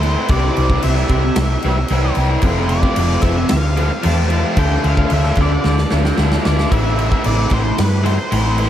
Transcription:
Already playing: fingered electric bass D2, overdriven electric guitar A2, lead electric guitar C5
0.03 overdriven electric guitar E3 A3 C4 E4, crash
0.17 overdriven electric guitar A3 C4 E4
0.28 fingered electric bass C2, overdriven electric guitar C3 E3 G3, lead electric guitar D5, kick, crash
0.33 overdriven electric guitar C4 E4
0.57 fingered electric bass C2, crash
0.70 overdriven electric guitar C4 E4, kick
0.74 overdriven electric guitar G3
0.83 fingered electric bass C2, overdriven electric guitar C3 E3 G3 C4 E4, lead electric guitar E5, crash
0.97 snare
1.09 fingered electric bass C2, overdriven electric guitar E3 G3 C4 E4, kick, crash
1.25 muted overdriven electric guitar stroke
1.36 fingered electric bass C2, snare, crash
1.62 fingered electric bass C2, overdriven electric guitar E3 G3 C4, crash
1.68 overdriven electric guitar E4
1.78 muted overdriven electric guitar stroke
1.88 fingered electric bass C2, overdriven electric guitar C3 E3 G3, crash
1.93 overdriven electric guitar C4 E4
2.15 fingered electric bass C2, overdriven electric guitar E3 G3 C4, crash
2.20 overdriven electric guitar E4
2.29 overdriven electric guitar G3 C4 E4
2.42 fingered electric bass F1, overdriven electric guitar F2 C3 F3 A3, kick, crash
2.46 overdriven electric guitar C4 F4
2.69 lead electric guitar D5, crash
2.82 overdriven electric guitar F3 A3 C4 F4, kick
2.96 fingered electric bass F1, overdriven electric guitar F2 C3 F3 A3 C4 F4, crash
3.10 snare
3.22 fingered electric bass F1, overdriven electric guitar F3 A3 C4, lead electric guitar E5, kick, crash
3.26 overdriven electric guitar F4
3.38 muted overdriven electric guitar stroke
3.49 fingered electric bass D2, lead electric guitar F5, snare, crash
3.77 overdriven electric guitar F3 A3 C4 F4, crash
3.91 muted overdriven electric guitar stroke
4.03 fingered electric bass E2, overdriven electric guitar F2 C3 F3 A3 C4 F4, lead electric guitar A5, crash
4.29 overdriven electric guitar F3 A3 C4 F4, lead electric guitar A5, crash
4.43 overdriven electric guitar F3 A3 C4 F4
4.57 fingered electric bass D2, overdriven electric guitar D3 A3 D4 F4, lead electric guitar G5, kick, crash
4.84 fingered electric bass D2, lead electric guitar F5, crash
4.97 overdriven electric guitar A3 D4 F4, kick
5.10 fingered electric bass D2, overdriven electric guitar D3 A3 D4, lead electric guitar E5, crash
5.14 overdriven electric guitar F4
5.23 snare
5.35 fingered electric bass D2, overdriven electric guitar D3 A3 D4, kick, crash
5.40 overdriven electric guitar F4, lead electric guitar D5
5.52 muted overdriven electric guitar stroke
5.64 fingered electric bass D2, snare
5.78 snare
5.91 fingered electric bass D2, overdriven electric guitar D3 A3 D4 F4, snare
6.05 muted overdriven electric guitar stroke, snare
6.17 fingered electric bass D2, overdriven electric guitar D3 A3 D4 F4, snare
6.32 snare
6.44 fingered electric bass D2, overdriven electric guitar D3 A3 D4 F4, lead electric guitar D5, snare
6.58 overdriven electric guitar A3 D4 F4, snare
6.70 fingered electric bass A1, overdriven electric guitar A2 E3 A3 C4 E4, lead electric guitar E5, kick, crash
6.99 crash
7.11 overdriven electric guitar A3 C4 E4, kick
7.24 fingered electric bass A1, overdriven electric guitar A2 E3 A3 C4 E4, lead electric guitar D5, crash
7.50 fingered electric bass A1, overdriven electric guitar E3 A3 C4, lead electric guitar C5, kick, crash
7.54 overdriven electric guitar E4
7.64 muted overdriven electric guitar stroke
7.78 fingered electric bass G2, lead electric guitar B4, snare, crash
8.04 overdriven electric guitar E3 A3 C4 E4, lead electric guitar C5, crash
8.18 muted overdriven electric guitar stroke
8.32 fingered electric bass A1, overdriven electric guitar A2 E3 A3 C4 E4, crash
8.58 overdriven electric guitar E3 A3 C4 E4, lead electric guitar C5, crash

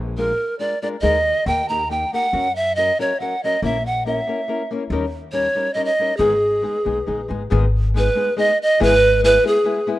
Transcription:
Already playing: upright bass A#1
0.17 nylon-string guitar G#3 D4 F4 A#4, pan flute A#4
0.59 nylon-string guitar G#3 D4 F4 A#4, pan flute D5
0.82 nylon-string guitar G#3 D4 F4 A#4, pan flute D5
1.01 upright bass D#2, nylon-string guitar D#3 G#3 D#4 G#4 A#4, pan flute D#5
1.46 upright bass D#2, nylon-string guitar A#3 D#4 G4 A#4, pan flute G5
1.69 nylon-string guitar A#3 D#4 G4 A#4, pan flute A#5
1.90 nylon-string guitar A#3 D#4 G4 A#4, pan flute G5
2.13 nylon-string guitar A#3 D#4 G4 A#4, pan flute F#5
2.32 upright bass F#2, nylon-string guitar F#3 C#4 F#4 A#4
2.56 pan flute E5
2.75 nylon-string guitar F#3 C#4 F#4 A#4, pan flute D#5
2.99 nylon-string guitar F#3 C#4 F#4 A#4, pan flute C#5
3.20 nylon-string guitar F#3 C#4 F#4 A#4, pan flute F#5
3.44 nylon-string guitar F#3 C#4 F#4 A#4, pan flute D#5
3.62 upright bass A#1, nylon-string guitar A#3 C#4 E4 A#4, pan flute E5
3.86 pan flute F#5
4.06 nylon-string guitar A#3 C#4 E4 A#4, pan flute E5
4.27 nylon-string guitar A#3 C#4 E4 A#4
4.48 nylon-string guitar A#3 C#4 E4 A#4
4.71 nylon-string guitar A#3 C#4 E4 A#4
4.90 upright bass D#2, nylon-string guitar D#3 G3 C#4 D#4 A#4
5.32 nylon-string guitar G3 C#4 D#4 A#4, pan flute C#5
5.55 nylon-string guitar G3 C#4 D#4 A#4
5.74 nylon-string guitar G3 C#4 D#4 A#4, pan flute D#5
5.85 pan flute D#5
5.99 nylon-string guitar G3 C#4 D#4 A#4
6.17 upright bass G#1, nylon-string guitar G#2 D#3 G#3 B3 D#4 G#4, pan flute G#4
6.62 nylon-string guitar G#3 B3 D#4 G#4
6.85 upright bass B1, nylon-string guitar G#3 B3 D#4 G#4
7.06 upright bass A#1, nylon-string guitar G#3 B3 D#4 G#4
7.28 upright bass G#1, nylon-string guitar G#3 B3 D#4 G#4
7.50 upright bass G#1, nylon-string guitar G#2 D#3 G#3 B3 D#4 G#4
7.94 nylon-string guitar G#3 B3 D#4 G#4, pan flute B4
8.15 nylon-string guitar G#3 B3 D#4 G#4
8.37 nylon-string guitar G#3 B3 D#4 G#4, pan flute D#5
8.62 pan flute D#5
8.80 upright bass G#1, nylon-string guitar G#2 E3 G#3 B3 E4 G#4, pan flute B4
9.23 nylon-string guitar G#3 B3 E4 G#4, pan flute B4
9.43 nylon-string guitar G#3 B3 E4 G#4, pan flute G#4
9.64 nylon-string guitar G#3 B3 E4 G#4
9.87 nylon-string guitar G#3 B3 E4 G#4

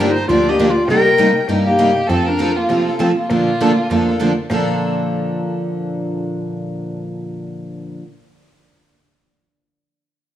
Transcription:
Already playing: cello G2, violin A#4
0.00 steel-string acoustic guitar D3 F3 A#3 D4 G4
0.09 clarinet D#4, violin C5
0.28 cello D2, steel-string acoustic guitar D3 F3 A#3 D4 G4, clarinet F4, violin D5
0.48 steel-string acoustic guitar A#3 D4 G4, clarinet G4, violin D#5
0.59 steel-string acoustic guitar D3 F3 A#3 D4 G4
0.67 clarinet F4, violin D5
0.88 cello C3, steel-string acoustic guitar C3 G3 A#3 D#4 G4, clarinet A#4, violin G5
1.18 steel-string acoustic guitar C3 G3 A#3 D#4 G4
1.48 cello G2, steel-string acoustic guitar C3 G3 A#3 D#4 G4
1.65 clarinet A#3, steel-string acoustic guitar D#4 G4, violin G4
1.69 steel-string acoustic guitar A#3
1.80 steel-string acoustic guitar C3 G3 A#3 D#4 G4
2.07 cello F2, steel-string acoustic guitar F3 A3 C4 F4, clarinet C4, violin A4
2.11 steel-string acoustic guitar A4
2.26 clarinet D4, violin A#4
2.40 steel-string acoustic guitar F3 A3 C4 F4 A4
2.56 clarinet A#3, violin F4
2.69 cello C3, steel-string acoustic guitar F3 A3 C4 F4 A4
2.88 steel-string acoustic guitar C4 F4 A4
2.99 steel-string acoustic guitar F3 A3 C4 F4 A4, clarinet C4, violin A4
3.17 clarinet A#3, violin F4
3.30 cello A#2, steel-string acoustic guitar D3 F3 A#3 D4 A4
3.61 steel-string acoustic guitar D3 F3 A#3 D4 A4
3.90 cello F2, steel-string acoustic guitar D3 F3 A#3 D4 A4
4.09 steel-string acoustic guitar A#3 D4 A4
4.22 steel-string acoustic guitar D3 F3 A#3 D4 A4
4.50 cello A#2, steel-string acoustic guitar A#2 D3 F3 A#3 D4 A4

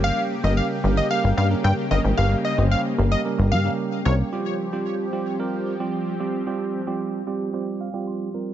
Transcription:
Already playing: analog synth bass G1, analog synth pad C#3 A#3 G4, tine electric piano G3 A#3 C#4 G4 A#4
0.04 digital synth lead F5
0.44 analog synth bass G1, tine electric piano G3 A#3 C#4 G4 A#4, digital synth lead D#5
0.57 digital synth lead F5
0.84 analog synth bass G1, tine electric piano G3 A#3 C#4 G4 A#4
0.97 digital synth lead D#5
1.10 tine electric piano G3 A#3 C#4 G4 A#4, digital synth lead F5
1.24 analog synth bass G1
1.37 analog synth bass G2, digital synth lead F5
1.50 tine electric piano G3 A#3 C#4 G4 A#4
1.64 analog synth bass G2, digital synth lead G5
1.91 analog synth bass G1, tine electric piano G3 A#3 C#4 G4 A#4, digital synth lead D#5
2.04 analog synth bass G#1
2.17 analog synth bass G1, tine electric piano G3 A#3 C#4 G4 A#4, digital synth lead F5
2.45 digital synth lead D#5
2.58 analog synth bass G1, tine electric piano G3 A#3 C#4 G4 C5
2.71 digital synth lead F5
2.98 analog synth bass G1, tine electric piano G3 A#3 C#4 G4 A#4
3.12 digital synth lead D#5
3.25 tine electric piano G3 A#3 C#4 G4 A#4
3.39 analog synth bass G1
3.52 analog synth bass G2, digital synth lead F5
3.65 tine electric piano G3 A#3 C#4 G4 A#4
4.05 analog synth bass C2, tine electric piano G3 A#3 C#4 G4 A#4, digital synth lead C#5
4.32 analog synth pad F3 C4 G4, tine electric piano G3 C4 F4 G4
4.72 tine electric piano G3 C4 F4 G4
5.12 tine electric piano G3 C4 F4 G4
5.39 tine electric piano G3 C4 F4 A#4
5.80 tine electric piano G3 C4 F4 G4
6.20 tine electric piano G3 C4 F4 G4
6.46 tine electric piano G3 C4 F4 G4
6.87 tine electric piano G3 C4 F4 G4
7.27 tine electric piano G3 C4 F4 G4
7.53 tine electric piano G3 C4 F4 G4
7.81 tine electric piano F5
7.94 tine electric piano G3 C4 F4 G4
8.07 tine electric piano C6
8.34 tine electric piano G3 C4 F4 A#4

